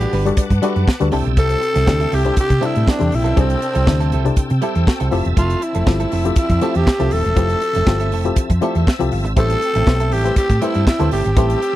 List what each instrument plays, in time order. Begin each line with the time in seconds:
Already playing: clav G3 D4 F#4 A4 B4, tenor saxophone G4, tonewheel organ B4 F#5 A5 D6
0.01 clean electric guitar G3 D4 F#4 B4, closed hi-hat
0.13 fingered electric bass G1, clean electric guitar G3 D4 F#4 B4, clav B4, open hi-hat
0.26 clav G3 D4 F#4 A4 D5, muted clean electric guitar stroke, closed hi-hat
0.37 clav D5, muted fingered electric bass stroke, muted clean electric guitar stroke, kick, closed hi-hat
0.50 fingered electric bass G2, muted clean electric guitar stroke, kick, closed hi-hat
0.62 clav G3 D4 F#4 A4 D5 E5, clean electric guitar G3 D4 F#4 B4, closed hi-hat
0.75 fingered electric bass F#2, clean electric guitar G3 D4 F#4 B4, closed hi-hat
0.87 clav F#5, muted clean electric guitar stroke, kick, snare
1.00 fingered electric bass D2, clav G3 D4 F#4 A4 B4, muted clean electric guitar stroke, closed hi-hat
1.12 fingered electric bass C2, clav C3 C4 D4 E4 A4 A5, clean electric guitar G3 C4 E4 A4, tonewheel organ C4 G5 A5 E6, open hi-hat
1.25 fingered electric bass B1, muted clean electric guitar stroke, closed hi-hat
1.37 fingered electric bass C2, clean electric guitar G3 C4 E4 A4, tenor saxophone A4, kick, closed hi-hat
1.50 closed hi-hat
1.62 muted clean electric guitar stroke, closed hi-hat
1.75 fingered electric bass C2, clean electric guitar G3 C4 E4 A4, snare, closed hi-hat
1.87 fingered electric bass D2, clav C3 C4 D4 E4 A4, muted clean electric guitar stroke, kick, snare
2.00 clean electric guitar G3 C4 E4 A4, closed hi-hat
2.12 fingered electric bass C2, clean electric guitar G3 C4 E4 A4, tenor saxophone G4, open hi-hat
2.25 clav C3 C4 D4 E4 A4, muted clean electric guitar stroke, closed hi-hat
2.36 tenor saxophone G4, muted clean electric guitar stroke, muted fingered electric bass stroke, kick, closed hi-hat
2.50 fingered electric bass C3, muted clean electric guitar stroke, kick, closed hi-hat
2.61 clav C3 C4 D4 E4 A4, clean electric guitar G3 C4 E4 A4, closed hi-hat
2.65 tenor saxophone E4
2.75 fingered electric bass A2, clean electric guitar G3 C4 E4 A4, closed hi-hat
2.86 clean electric guitar G3 C4 E4 A4, tenor saxophone D4, kick, snare
2.99 fingered electric bass E2, clav C3 C4 D4 E4 A4, closed hi-hat
3.11 fingered electric bass A#1, muted clean electric guitar stroke, open hi-hat
3.15 tenor saxophone E4
3.24 fingered electric bass B1, clean electric guitar G3 C4 E4 A4, closed hi-hat
3.36 fingered electric bass C2, clav C3 C4 D4 E4 G#4, clean electric guitar G3 C4 E4 A4, tenor saxophone C4, kick, closed hi-hat
3.44 clav A4
3.50 closed hi-hat
3.62 closed hi-hat
3.74 fingered electric bass C2, clean electric guitar G3 C4 E4 A4, closed hi-hat
3.87 fingered electric bass D2, clav C3 C4 D4 E4 A4, kick, snare
4.00 clean electric guitar G3 C4 E4 A4, closed hi-hat
4.12 fingered electric bass C2, clean electric guitar G3 C4 E4 A4, closed hi-hat
4.25 clav C3 C4 D4 E4 A4, muted clean electric guitar stroke, closed hi-hat
4.36 muted fingered electric bass stroke, muted clean electric guitar stroke, kick, closed hi-hat
4.50 fingered electric bass C3, muted clean electric guitar stroke, closed hi-hat
4.62 clean electric guitar G3 C4 E4 A4, clav E4 G4, closed hi-hat
4.75 fingered electric bass E2, clean electric guitar G3 C4 E4 A4, closed hi-hat
4.87 clav F#4 A4, muted clean electric guitar stroke, kick, snare
5.00 fingered electric bass C2, clean electric guitar G3 C4 E4 A4, closed hi-hat
5.11 fingered electric bass F1, clav F3 C4 E4 G4 A4, clean electric guitar A3 C4 E4 A4, tonewheel organ E5 A5, open hi-hat
5.25 fingered electric bass E1, muted clean electric guitar stroke, closed hi-hat
5.36 fingered electric bass F1, clean electric guitar A3 C4 E4 A4, tenor saxophone F4, kick, closed hi-hat
5.50 closed hi-hat
5.62 tenor saxophone E4, muted clean electric guitar stroke, closed hi-hat
5.75 fingered electric bass F1, clean electric guitar A3 C4 E4 A4, closed hi-hat
5.86 fingered electric bass G1, clav F3 C4 E4 G4 A4, muted clean electric guitar stroke, kick, snare
6.00 clean electric guitar A3 C4 E4 A4, closed hi-hat
6.12 fingered electric bass F1, clean electric guitar A3 C4 E4 A4, open hi-hat
6.24 clav F3 C4 E4 G4 A4, muted clean electric guitar stroke, closed hi-hat
6.36 tenor saxophone E4, muted fingered electric bass stroke, muted clean electric guitar stroke, kick, closed hi-hat
6.50 fingered electric bass F2, muted clean electric guitar stroke, kick, closed hi-hat
6.61 clav F3 C4 E4 G4 A4, clean electric guitar A3 C4 E4 A4, closed hi-hat
6.75 fingered electric bass E2, clean electric guitar A3 C4 E4 A4, tenor saxophone G4, closed hi-hat
6.87 muted clean electric guitar stroke, kick, snare
6.99 fingered electric bass C2, clav F3 C4 E4 G4 A4, clean electric guitar A3 C4 E4 A4, closed hi-hat
7.11 fingered electric bass D#1, clean electric guitar A3 C4 E4 A4, tenor saxophone A4, open hi-hat
7.25 fingered electric bass E1, muted clean electric guitar stroke, closed hi-hat
7.36 fingered electric bass F1, clav F3 C4 E4 G4 B4, clean electric guitar A3 C4 E4 A4, kick, closed hi-hat
7.49 closed hi-hat
7.61 muted clean electric guitar stroke, closed hi-hat
7.75 fingered electric bass F1, clean electric guitar A3 C4 E4 A4, closed hi-hat
7.87 fingered electric bass G1, clav F3 C4 E4 G4 A4, muted clean electric guitar stroke, kick, snare
8.00 clean electric guitar A3 C4 E4 A4, closed hi-hat
8.12 fingered electric bass F1, clean electric guitar A3 C4 E4 A4, open hi-hat
8.25 clav F3 C4 E4 G4 A4, muted clean electric guitar stroke, closed hi-hat
8.36 muted fingered electric bass stroke, muted clean electric guitar stroke, kick, closed hi-hat
8.50 fingered electric bass F2, muted clean electric guitar stroke, kick, closed hi-hat
8.61 clav F3 C4 E4 G4 A4 D5, clean electric guitar A3 C4 E4 A4, closed hi-hat
8.75 fingered electric bass E2, clean electric guitar A3 C4 E4 A4, closed hi-hat
8.87 clav E5, muted clean electric guitar stroke, kick, snare
8.99 fingered electric bass C2, clav F3 C4 E4 G4 A4, muted clean electric guitar stroke, closed hi-hat
9.12 fingered electric bass G1, clav F5, open hi-hat
9.25 fingered electric bass G#1, muted clean electric guitar stroke, closed hi-hat
9.36 fingered electric bass A1, clean electric guitar G3 C4 E4 A4, clav A3 E4 G4 B4 C5, tenor saxophone A4, tonewheel organ G5 A5, kick, closed hi-hat
9.50 closed hi-hat
9.62 closed hi-hat
9.75 fingered electric bass A1, clean electric guitar G3 C4 E4 A4, closed hi-hat
9.87 fingered electric bass B1, clav A3 E4 G4 B4 C5, muted clean electric guitar stroke, kick, snare
10.00 clean electric guitar G3 C4 E4 A4, closed hi-hat
10.12 fingered electric bass A1, clean electric guitar G3 C4 E4 A4, tenor saxophone G4, open hi-hat
10.24 clav A3 E4 G4 B4 C5, muted clean electric guitar stroke, closed hi-hat
10.36 tenor saxophone G4, muted fingered electric bass stroke, muted clean electric guitar stroke, kick, closed hi-hat
10.50 fingered electric bass A2, muted clean electric guitar stroke, kick, closed hi-hat
10.62 clean electric guitar G3 C4 E4 A4, clav A3 E4 G4 B4 C5, tenor saxophone E4, closed hi-hat
10.74 fingered electric bass G2, clean electric guitar G3 C4 E4 A4, closed hi-hat
10.87 tenor saxophone E4, muted clean electric guitar stroke, kick, snare
10.99 fingered electric bass D2, clean electric guitar G3 C4 E4 A4, clav A3 E4 G4 B4 C5, closed hi-hat
11.11 fingered electric bass G1, clean electric guitar G3 C4 E4 A4, tenor saxophone G4, open hi-hat
11.25 fingered electric bass G#1, muted clean electric guitar stroke, closed hi-hat
11.37 fingered electric bass A1, clean electric guitar G3 C4 E4 A4, clav A3 E4 G4 B4 C5, tenor saxophone G4, kick, closed hi-hat
11.50 closed hi-hat
11.62 closed hi-hat